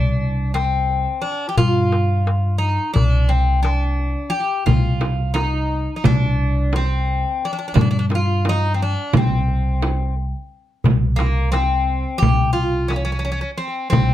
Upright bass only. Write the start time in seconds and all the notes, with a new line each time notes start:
Already playing: C2
1.58 G2
2.95 C2
4.68 C2
6.05 C2
7.76 G2
9.13 C2
10.85 C2
12.22 C2
13.93 C2